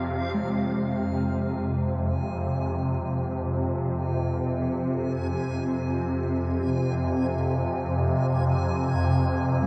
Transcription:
Already playing: synth drone F2 C3, synth texture F5
0.34 synth drone F2 C3, bronze metallophone G#3, synth texture G#5
9.63 bronze metallophone G3

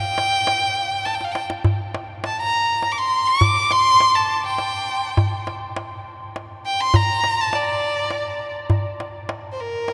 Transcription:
Already playing: violin G5
0.18 tombak tek
0.47 tombak tek
1.05 violin A5, tombak tek
1.15 violin G5
1.21 violin F5, tombak ka
1.32 violin G5, tombak tek
1.50 tombak ka
1.64 tombak dum
1.95 tombak tek
2.24 violin A5, tombak tek
2.39 violin A#5
2.83 tombak tek
2.92 violin D6
2.98 violin C6
3.27 violin D6
3.41 tombak dum
3.71 violin C6, tombak tek
4.00 tombak tek
4.15 violin A5
4.46 violin G5
4.58 tombak tek
5.17 tombak dum
5.47 tombak tek
5.76 tombak tek
6.36 tombak tek
6.66 violin G5
6.81 violin C6
6.94 violin A#5, tombak dum
7.24 tombak tek
7.41 violin A5
7.53 violin D5, tombak tek
8.11 tombak tek
8.70 tombak dum
9.00 tombak tek
9.29 tombak tek
9.52 violin C5
9.60 violin A#4
9.88 tombak tek

